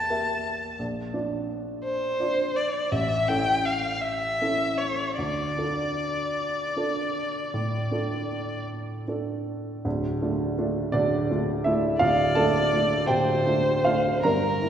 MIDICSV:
0, 0, Header, 1, 3, 480
1, 0, Start_track
1, 0, Key_signature, -1, "minor"
1, 0, Tempo, 702576
1, 550, Time_signature, 12, 3, 24, 8
1, 1511, Tempo, 728155
1, 2471, Tempo, 773196
1, 6311, Tempo, 715137
1, 8231, Tempo, 761421
1, 9478, End_track
2, 0, Start_track
2, 0, Title_t, "Violin"
2, 0, Program_c, 0, 40
2, 0, Note_on_c, 0, 81, 81
2, 539, Note_off_c, 0, 81, 0
2, 1259, Note_on_c, 0, 72, 88
2, 1742, Note_on_c, 0, 74, 68
2, 1752, Note_off_c, 0, 72, 0
2, 1978, Note_on_c, 0, 76, 77
2, 1987, Note_off_c, 0, 74, 0
2, 2214, Note_on_c, 0, 79, 90
2, 2224, Note_off_c, 0, 76, 0
2, 2462, Note_on_c, 0, 77, 71
2, 2472, Note_off_c, 0, 79, 0
2, 2689, Note_on_c, 0, 76, 90
2, 2699, Note_off_c, 0, 77, 0
2, 3160, Note_on_c, 0, 73, 73
2, 3169, Note_off_c, 0, 76, 0
2, 3400, Note_off_c, 0, 73, 0
2, 3404, Note_on_c, 0, 74, 77
2, 5557, Note_off_c, 0, 74, 0
2, 7757, Note_on_c, 0, 74, 73
2, 8449, Note_on_c, 0, 72, 77
2, 8459, Note_off_c, 0, 74, 0
2, 9186, Note_off_c, 0, 72, 0
2, 9189, Note_on_c, 0, 70, 76
2, 9478, Note_off_c, 0, 70, 0
2, 9478, End_track
3, 0, Start_track
3, 0, Title_t, "Grand piano"
3, 0, Program_c, 1, 0
3, 0, Control_c, 1, 64, 127
3, 0, Note_on_c, 1, 40, 51
3, 0, Note_on_c, 1, 58, 41
3, 0, Note_on_c, 1, 67, 44
3, 0, Note_on_c, 1, 76, 46
3, 69, Note_off_c, 1, 58, 0
3, 69, Note_on_c, 1, 58, 43
3, 74, Note_off_c, 1, 67, 0
3, 74, Note_on_c, 1, 67, 36
3, 75, Note_off_c, 1, 76, 0
3, 75, Note_on_c, 1, 76, 45
3, 522, Note_off_c, 1, 58, 0
3, 524, Note_off_c, 1, 67, 0
3, 525, Note_off_c, 1, 76, 0
3, 540, Note_on_c, 1, 34, 54
3, 562, Control_c, 1, 64, 0
3, 563, Note_off_c, 1, 40, 0
3, 671, Control_c, 1, 64, 127
3, 777, Note_off_c, 1, 34, 0
3, 778, Note_on_c, 1, 62, 39
3, 780, Note_on_c, 1, 65, 38
3, 785, Note_on_c, 1, 74, 42
3, 1477, Note_off_c, 1, 62, 0
3, 1479, Note_off_c, 1, 65, 0
3, 1481, Note_off_c, 1, 74, 0
3, 1503, Note_on_c, 1, 62, 45
3, 1505, Note_on_c, 1, 74, 46
3, 1507, Note_on_c, 1, 65, 45
3, 1955, Note_off_c, 1, 62, 0
3, 1956, Note_off_c, 1, 74, 0
3, 1957, Note_off_c, 1, 65, 0
3, 1975, Note_on_c, 1, 33, 53
3, 1998, Control_c, 1, 64, 0
3, 2098, Control_c, 1, 64, 127
3, 2214, Note_off_c, 1, 33, 0
3, 2216, Note_on_c, 1, 61, 40
3, 2222, Note_on_c, 1, 64, 38
3, 2226, Note_on_c, 1, 69, 45
3, 2910, Note_off_c, 1, 61, 0
3, 2913, Note_off_c, 1, 64, 0
3, 2915, Note_off_c, 1, 69, 0
3, 2934, Note_on_c, 1, 61, 40
3, 2937, Note_on_c, 1, 64, 39
3, 2937, Note_on_c, 1, 69, 42
3, 3390, Note_off_c, 1, 61, 0
3, 3392, Note_off_c, 1, 64, 0
3, 3392, Note_off_c, 1, 69, 0
3, 3412, Note_on_c, 1, 38, 50
3, 3432, Control_c, 1, 64, 0
3, 3558, Control_c, 1, 64, 127
3, 3653, Note_off_c, 1, 38, 0
3, 3655, Note_on_c, 1, 62, 37
3, 3662, Note_on_c, 1, 65, 39
3, 3662, Note_on_c, 1, 69, 42
3, 4368, Note_off_c, 1, 62, 0
3, 4371, Note_off_c, 1, 65, 0
3, 4371, Note_off_c, 1, 69, 0
3, 4394, Note_on_c, 1, 62, 41
3, 4398, Note_on_c, 1, 65, 42
3, 4399, Note_on_c, 1, 69, 45
3, 4852, Note_off_c, 1, 62, 0
3, 4854, Note_off_c, 1, 65, 0
3, 4855, Note_off_c, 1, 69, 0
3, 4873, Note_on_c, 1, 45, 46
3, 5107, Note_off_c, 1, 45, 0
3, 5107, Note_on_c, 1, 62, 37
3, 5109, Note_on_c, 1, 65, 41
3, 5112, Note_on_c, 1, 69, 42
3, 5798, Note_off_c, 1, 62, 0
3, 5799, Note_off_c, 1, 65, 0
3, 5801, Note_off_c, 1, 69, 0
3, 5830, Note_on_c, 1, 62, 36
3, 5832, Note_on_c, 1, 65, 34
3, 5836, Note_on_c, 1, 69, 44
3, 6286, Note_off_c, 1, 62, 0
3, 6287, Note_off_c, 1, 65, 0
3, 6289, Note_off_c, 1, 69, 0
3, 6308, Note_on_c, 1, 38, 59
3, 6310, Note_on_c, 1, 26, 59
3, 6321, Control_c, 1, 64, 0
3, 6419, Control_c, 1, 64, 127
3, 6544, Note_off_c, 1, 38, 0
3, 6545, Note_off_c, 1, 26, 0
3, 6555, Note_on_c, 1, 57, 42
3, 6560, Note_on_c, 1, 62, 45
3, 6561, Note_on_c, 1, 65, 46
3, 6771, Note_off_c, 1, 57, 0
3, 6773, Note_off_c, 1, 62, 0
3, 6774, Note_off_c, 1, 65, 0
3, 6798, Note_on_c, 1, 57, 45
3, 6801, Note_on_c, 1, 65, 53
3, 6803, Note_on_c, 1, 62, 45
3, 7014, Note_off_c, 1, 57, 0
3, 7016, Note_off_c, 1, 65, 0
3, 7017, Note_off_c, 1, 62, 0
3, 7029, Note_on_c, 1, 74, 98
3, 7035, Note_on_c, 1, 62, 69
3, 7037, Note_on_c, 1, 26, 62
3, 7037, Note_on_c, 1, 38, 59
3, 7271, Note_off_c, 1, 26, 0
3, 7271, Note_off_c, 1, 38, 0
3, 7277, Note_off_c, 1, 62, 0
3, 7285, Note_on_c, 1, 57, 44
3, 7287, Note_on_c, 1, 62, 47
3, 7288, Note_on_c, 1, 65, 52
3, 7498, Note_off_c, 1, 57, 0
3, 7500, Note_off_c, 1, 62, 0
3, 7500, Note_off_c, 1, 65, 0
3, 7512, Note_on_c, 1, 76, 86
3, 7515, Note_off_c, 1, 74, 0
3, 7522, Note_on_c, 1, 64, 65
3, 7524, Note_on_c, 1, 62, 43
3, 7525, Note_on_c, 1, 57, 50
3, 7529, Note_on_c, 1, 65, 48
3, 7735, Note_off_c, 1, 57, 0
3, 7735, Note_off_c, 1, 62, 0
3, 7738, Note_off_c, 1, 65, 0
3, 7741, Note_off_c, 1, 64, 0
3, 7748, Note_on_c, 1, 77, 98
3, 7753, Note_off_c, 1, 76, 0
3, 7754, Note_on_c, 1, 38, 58
3, 7754, Note_on_c, 1, 65, 77
3, 7757, Note_on_c, 1, 26, 61
3, 7974, Note_off_c, 1, 65, 0
3, 7984, Note_off_c, 1, 38, 0
3, 7985, Note_off_c, 1, 26, 0
3, 7988, Note_off_c, 1, 77, 0
3, 7988, Note_on_c, 1, 81, 97
3, 7996, Note_on_c, 1, 69, 75
3, 7999, Note_on_c, 1, 57, 48
3, 8000, Note_on_c, 1, 62, 45
3, 8002, Note_on_c, 1, 65, 47
3, 8210, Note_off_c, 1, 57, 0
3, 8211, Note_off_c, 1, 62, 0
3, 8212, Note_off_c, 1, 65, 0
3, 8235, Note_on_c, 1, 57, 41
3, 8241, Note_on_c, 1, 62, 44
3, 8245, Note_on_c, 1, 65, 47
3, 8437, Note_off_c, 1, 69, 0
3, 8440, Note_off_c, 1, 57, 0
3, 8443, Note_off_c, 1, 62, 0
3, 8445, Note_off_c, 1, 65, 0
3, 8458, Note_on_c, 1, 79, 106
3, 8459, Note_off_c, 1, 81, 0
3, 8465, Note_on_c, 1, 26, 57
3, 8466, Note_on_c, 1, 38, 50
3, 8467, Note_on_c, 1, 67, 68
3, 8696, Note_off_c, 1, 26, 0
3, 8697, Note_off_c, 1, 38, 0
3, 8704, Note_on_c, 1, 57, 43
3, 8707, Note_on_c, 1, 62, 39
3, 8710, Note_on_c, 1, 65, 47
3, 8927, Note_off_c, 1, 57, 0
3, 8928, Note_off_c, 1, 67, 0
3, 8929, Note_off_c, 1, 62, 0
3, 8930, Note_off_c, 1, 65, 0
3, 8945, Note_on_c, 1, 77, 86
3, 8949, Note_off_c, 1, 79, 0
3, 8953, Note_on_c, 1, 57, 47
3, 8953, Note_on_c, 1, 65, 65
3, 8958, Note_on_c, 1, 62, 44
3, 9173, Note_off_c, 1, 57, 0
3, 9175, Note_off_c, 1, 62, 0
3, 9180, Note_off_c, 1, 65, 0
3, 9190, Note_on_c, 1, 82, 94
3, 9193, Note_off_c, 1, 77, 0
3, 9197, Note_on_c, 1, 31, 54
3, 9197, Note_on_c, 1, 43, 52
3, 9197, Note_on_c, 1, 70, 71
3, 9210, Control_c, 1, 64, 0
3, 9317, Control_c, 1, 64, 127
3, 9425, Note_off_c, 1, 43, 0
3, 9426, Note_off_c, 1, 31, 0
3, 9434, Note_on_c, 1, 64, 45
3, 9435, Note_on_c, 1, 58, 43
3, 9478, Note_off_c, 1, 58, 0
3, 9478, Note_off_c, 1, 64, 0
3, 9478, Note_off_c, 1, 70, 0
3, 9478, Note_off_c, 1, 82, 0
3, 9478, End_track
0, 0, End_of_file